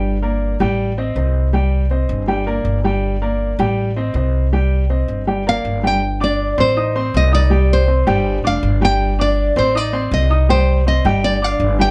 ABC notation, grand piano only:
X:1
M:4/4
L:1/8
Q:1/4=161
K:Gm
V:1 name="Grand piano"
[G,Gg] [B,Bd]2 [G,Gg]2 [Cce] [Cce]2 | [G,Gg]2 [Cce]2 [G,Gg] [B,Bd]2 [G,Gg]- | [G,Gg] [B,Bd]2 [G,Gg]2 [Cce] [Cce]2 | [G,Gg]2 [Cce]2 [G,Gg] [B,Bd]2 [G,Gg] |
z [Ddd']2 [Ccc'] [Eee'] [Ccc']2 [Eee'] | [G,Gg]2 [Ccc'] [G,Gg]2 [Ddd']2 [G,Gg]- | [G,Gg] [Ddd']2 [Ccc'] [Eee'] [Ccc']2 [Eee'] | [G,Gg]2 [Ccc'] [G,Gg]2 [Ddd']2 [G,Gg] |]